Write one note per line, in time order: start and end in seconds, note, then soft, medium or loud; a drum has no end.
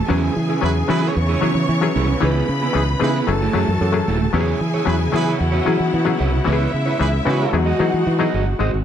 0.08 0.28 E2 loud
0.08 3.25 C#3 medium
0.08 3.24 E3 loud
0.08 0.49 F#3 medium
0.08 3.24 B3 medium
0.08 0.49 B3 medium
0.08 0.33 C#4 loud
0.08 0.49 C#4 medium
0.08 0.33 E4 medium
0.08 0.49 E4 medium
0.08 1.13 G#4 medium
0.08 0.33 G#4 loud
0.08 0.50 G#4 medium
0.08 1.13 G#5 medium
0.35 0.55 E3 medium
0.35 muted clean electric guitar stroke soft
0.48 0.61 C#4 medium
0.48 0.62 E4 medium
0.48 0.62 G#4 medium
0.61 0.81 E2 loud
0.61 0.82 F#3 medium
0.61 0.82 B3 medium
0.61 0.82 C#4 medium
0.61 0.70 E4 medium
0.61 0.82 E4 medium
0.61 0.70 G#4 medium
0.61 0.70 B4 loud
0.61 0.82 B4 medium
0.61 muted clean electric guitar stroke soft
0.75 muted clean electric guitar stroke soft
0.88 1.08 E3 medium
0.88 1.28 F#3 medium
0.88 1.28 B3 medium
0.88 1.02 C#4 medium
0.88 1.29 C#4 medium
0.88 1.11 E4 medium
0.88 1.29 E4 medium
0.88 1.02 E4 loud
0.88 1.29 F#4 medium
0.88 1.11 G#4 medium
0.88 1.01 G#4 medium
0.88 1.11 B4 loud
1.02 1.14 C#4 medium
1.02 1.15 E4 medium
1.02 1.15 G#4 medium
1.14 1.35 E2 loud
1.14 2.19 C#5 medium
1.14 2.19 C#6 medium
1.14 muted clean electric guitar stroke soft
1.29 1.41 C#4 medium
1.29 1.41 E4 medium
1.29 1.42 G#4 medium
1.41 1.52 E3 medium
1.41 1.71 F#3 medium
1.41 1.72 B3 medium
1.41 1.72 C#4 medium
1.41 1.56 C#4 medium
1.41 1.72 E4 medium
1.41 1.56 E4 medium
1.41 1.72 G#4 medium
1.41 1.54 G#4 medium
1.55 1.64 E3 medium
1.55 muted clean electric guitar stroke soft
1.69 1.87 E3 loud
1.69 muted clean electric guitar stroke soft
1.81 2.11 F#3 medium
1.81 2.12 B3 medium
1.81 2.12 C#4 medium
1.81 2.12 E4 medium
1.81 2.12 G#4 loud
1.81 muted clean electric guitar stroke soft
1.96 2.14 C2 loud
1.96 2.13 C#4 medium
1.96 2.09 E4 medium
1.96 2.08 G#4 loud
2.09 muted clean electric guitar stroke soft
2.21 2.41 C#2 loud
2.21 2.61 E3 medium
2.21 2.61 B3 medium
2.21 2.46 B3 medium
2.21 2.61 C#4 medium
2.21 2.62 D#4 medium
2.21 2.47 E4 medium
2.21 2.62 G#4 medium
2.21 2.47 G#4 loud
2.21 3.26 B4 medium
2.21 3.26 B5 medium
2.48 2.67 C#3 loud
2.48 muted clean electric guitar stroke soft
2.62 2.74 B3 medium
2.62 2.75 E4 medium
2.62 2.75 G#4 medium
2.73 2.94 C#2 medium
2.73 2.94 E3 medium
2.73 2.94 B3 medium
2.73 2.95 C#4 medium
2.73 2.95 D#4 medium
2.73 2.83 E4 medium
2.73 2.83 G#4 loud
2.73 2.95 G#4 medium
2.73 2.83 B4 medium
2.73 muted clean electric guitar stroke soft
2.89 muted clean electric guitar stroke soft
3.00 3.20 C#3 medium
3.00 3.27 E3 medium
3.00 3.27 B3 medium
3.00 3.15 B3 medium
3.00 3.27 C#4 medium
3.00 3.27 D#4 medium
3.00 3.18 E4 loud
3.00 3.15 E4 medium
3.00 3.27 G#4 loud
3.00 3.18 G#4 medium
3.00 3.14 G#4 medium
3.00 3.18 B4 loud
3.15 3.28 B3 medium
3.15 3.28 E4 medium
3.15 3.28 G#4 medium
3.27 3.47 F#1 loud
3.27 4.33 E3 medium
3.27 3.49 F#3 medium
3.27 3.49 A3 medium
3.27 4.33 A3 medium
3.27 3.49 C#4 medium
3.27 3.49 E4 medium
3.27 4.33 F#4 medium
3.27 3.49 G#4 loud
3.27 4.32 A4 medium
3.27 4.32 A5 medium
3.27 muted clean electric guitar stroke soft
3.42 3.54 A3 medium
3.42 3.55 E4 medium
3.42 3.55 G#4 medium
3.53 3.64 F#2 loud
3.53 3.84 F#3 medium
3.53 3.84 A3 medium
3.53 3.69 A3 medium
3.53 3.84 C#4 medium
3.53 3.84 E4 medium
3.53 3.69 E4 medium
3.53 3.85 G#4 medium
3.53 3.68 G#4 medium
3.68 3.78 F#2 medium
3.68 muted clean electric guitar stroke medium
3.81 4.00 F#2 loud
3.81 muted clean electric guitar stroke soft
3.92 4.23 F#3 loud
3.92 4.24 A3 medium
3.92 4.24 C#4 medium
3.92 4.24 E4 medium
3.92 4.24 G#4 loud
3.92 muted clean electric guitar stroke soft
4.08 4.27 D#1 medium
4.08 4.26 A3 medium
4.08 4.21 E4 medium
4.08 4.20 G#4 medium
4.21 muted clean electric guitar stroke soft
4.32 4.53 E2 loud
4.32 7.49 C#3 medium
4.32 4.74 F#3 medium
4.32 7.49 B3 medium
4.32 4.74 B3 medium
4.32 4.74 C#4 medium
4.32 7.49 E4 loud
4.32 4.74 E4 medium
4.32 4.59 E4 medium
4.32 4.40 G4 medium
4.32 5.38 G#4 medium
4.32 4.59 G#4 medium
4.32 4.59 C#5 loud
4.32 5.38 G#5 medium
4.41 4.77 G#4 medium
4.61 4.80 E3 medium
4.61 muted clean electric guitar stroke soft
4.74 4.86 E4 medium
4.74 4.86 G#4 medium
4.74 4.86 C#5 medium
4.85 5.06 E2 loud
4.85 5.06 F#3 medium
4.85 5.06 B3 medium
4.85 5.07 C#4 medium
4.85 5.07 E4 medium
4.85 4.95 E4 medium
4.85 4.95 G#4 medium
4.85 5.07 G#4 medium
4.85 4.95 B4 loud
4.85 muted clean electric guitar stroke soft
4.99 muted clean electric guitar stroke soft
5.12 5.33 E3 medium
5.12 5.53 F#3 medium
5.12 5.53 B3 medium
5.12 5.54 C#4 medium
5.12 5.26 E4 medium
5.12 5.30 E4 loud
5.12 5.54 E4 medium
5.12 5.30 G#4 loud
5.12 5.25 G#4 loud
5.12 5.54 G#4 medium
5.12 5.30 B4 loud
5.12 5.24 C#5 loud
5.25 5.38 E4 medium
5.25 5.39 G#4 medium
5.25 5.39 C#5 medium
5.39 5.59 E2 loud
5.39 6.44 F#4 medium
5.39 6.44 F#5 medium
5.39 muted clean electric guitar stroke soft
5.52 5.64 E4 medium
5.52 5.65 G#4 medium
5.52 5.66 C#5 loud
5.65 5.76 E3 medium
5.65 5.96 F#3 medium
5.65 5.97 B3 medium
5.65 5.97 C#4 medium
5.65 5.80 E4 medium
5.65 5.97 E4 medium
5.65 5.78 G#4 medium
5.65 5.97 G#4 loud
5.65 5.77 C#5 medium
5.78 5.90 E3 medium
5.78 muted clean electric guitar stroke medium
5.92 6.13 E3 loud
5.92 muted clean electric guitar stroke soft
6.05 6.36 F#3 loud
6.05 6.36 B3 medium
6.05 6.36 C#4 medium
6.05 6.37 E4 medium
6.05 6.37 G#4 loud
6.05 muted clean electric guitar stroke soft
6.19 6.39 C2 loud
6.19 6.38 E4 loud
6.19 6.32 G#4 medium
6.19 6.31 C#5 loud
6.32 muted clean electric guitar stroke soft
6.45 6.66 C#2 loud
6.45 6.86 E3 medium
6.45 8.57 G#3 medium
6.45 6.86 B3 medium
6.45 6.86 C#4 medium
6.45 6.71 E4 medium
6.45 6.86 E4 medium
6.45 7.51 E4 medium
6.45 6.53 F#4 medium
6.45 6.71 B4 medium
6.45 6.71 C#5 loud
6.45 7.51 E5 medium
6.53 6.90 G#4 loud
6.73 6.93 C#3 medium
6.73 muted clean electric guitar stroke soft
6.86 6.98 E4 medium
6.86 6.98 B4 medium
6.86 6.99 C#5 medium
6.99 7.19 C#2 loud
6.99 7.20 E3 medium
6.99 7.20 B3 medium
6.99 7.20 C#4 medium
6.99 7.20 D#4 medium
6.99 7.08 E4 medium
6.99 7.08 G#4 loud
6.99 7.20 G#4 loud
6.99 7.08 B4 medium
6.99 muted clean electric guitar stroke soft
7.12 muted clean electric guitar stroke soft
7.25 7.45 C#3 loud
7.25 7.53 E3 medium
7.25 7.52 B3 medium
7.25 7.53 C#4 medium
7.25 7.52 D#4 medium
7.25 7.39 E4 medium
7.25 7.60 F#4 loud
7.25 7.53 F#4 medium
7.25 7.60 G#4 loud
7.25 7.60 B4 loud
7.25 7.38 B4 medium
7.25 7.38 C#5 medium
7.39 7.52 E4 medium
7.39 7.53 B4 medium
7.39 7.53 C#5 medium
7.53 7.72 E2 medium
7.53 8.58 E3 medium
7.53 7.74 F#3 medium
7.53 7.75 B3 medium
7.53 8.59 D#4 medium
7.53 7.75 D#4 medium
7.53 7.75 E4 medium
7.53 8.58 F#4 medium
7.53 8.59 F#4 medium
7.53 7.75 G#4 loud
7.53 8.57 F#5 medium
7.53 muted clean electric guitar stroke soft
7.66 7.77 F#4 medium
7.66 7.79 G#4 medium
7.66 7.79 D#5 medium
7.79 7.89 E3 loud
7.79 8.10 F#3 medium
7.79 8.10 B3 medium
7.79 8.10 D#4 medium
7.79 8.10 E4 medium
7.79 7.93 F#4 medium
7.79 7.93 G#4 medium
7.79 8.10 G#4 medium
7.79 7.92 D#5 medium
7.93 8.03 E3 medium
7.93 muted clean electric guitar stroke soft
8.07 8.26 E3 loud
8.07 muted clean electric guitar stroke soft
8.19 8.49 F#3 medium
8.19 8.50 B3 medium
8.19 8.50 D#4 medium
8.19 8.50 E4 medium
8.19 8.33 F#4 medium
8.19 8.33 G#4 medium
8.19 8.50 G#4 loud
8.19 8.34 D#5 medium
8.34 8.53 G1 medium
8.34 8.48 F#4 medium
8.34 8.46 G#4 medium
8.34 8.45 D#5 medium
8.46 muted clean electric guitar stroke soft
8.59 8.69 G#1 loud
8.59 8.84 C3 medium
8.59 8.84 G#3 medium
8.59 8.84 C4 medium
8.59 8.84 D#4 medium
8.59 8.78 F#4 medium
8.59 8.84 F#4 medium
8.59 8.84 G#4 medium
8.59 8.72 C5 medium
8.59 8.71 D#5 medium
8.73 8.83 G#1 medium
8.73 muted clean electric guitar stroke medium